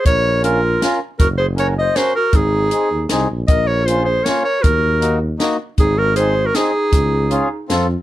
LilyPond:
<<
  \new Staff \with { instrumentName = "Clarinet" } { \time 3/4 \key des \major \tempo 4 = 157 des''4 bes'4. r8 | bes'8 c''8 des''8 ees''8 c''8 bes'8 | aes'2 r4 | ees''8 des''8 c''8 c''8 des''8 des''8 |
bes'4. r4. | aes'8 bes'8 c''8. bes'16 aes'4~ | aes'2 r4 | }
  \new Staff \with { instrumentName = "Clarinet" } { \time 3/4 \key des \major bes'4 f'4. r8 | ges'8 aes'8 bes'8 c''8 ges'8 ges'8 | ees'2 r4 | bes'8 bes'8 f'8 aes'8 bes'8 bes'8 |
ges'4. r4. | ees'8 ges'8 aes'8. ges'16 ees'4~ | ees'2 r4 | }
  \new Staff \with { instrumentName = "Accordion" } { \time 3/4 \key des \major r4 <des' f' bes'>8 r8 <des' f' bes'>8 r8 | r4 <des' ges' bes'>8 r8 <des' ges' bes'>8 r8 | r4 <c' ees' aes'>8 r8 <c' ees' aes'>8 r8 | r4 <bes des' f'>8 r8 <bes des' f'>8 r8 |
r4 <bes ees' ges'>8 r8 <bes ees' ges'>8 r8 | r4 <c' ees' aes'>8 r8 <c' ees' aes'>8 r8 | r4 <des' f' aes'>8 r8 <c' f' a'>8 r8 | }
  \new Staff \with { instrumentName = "Tuba" } { \clef bass \time 3/4 \key des \major bes,,2. | ges,,2. | aes,,4. ees,8 c,8 bes,,8 | bes,,2. |
ees,2. | aes,,2. | des,2 f,4 | }
  \new DrumStaff \with { instrumentName = "Drums" } \drummode { \time 3/4 <hh bd>4 hh4 <hh sn>4 | <hh bd>4 hh4 <hh sn>4 | <hh bd>4 hh4 <hh sn>4 | <hh bd>4 hh4 <hh sn>4 |
<hh bd>4 hh4 <hh sn>4 | <hh bd>4 hh4 <hh sn>4 | <hh bd>4 hh4 <hh sn>4 | }
>>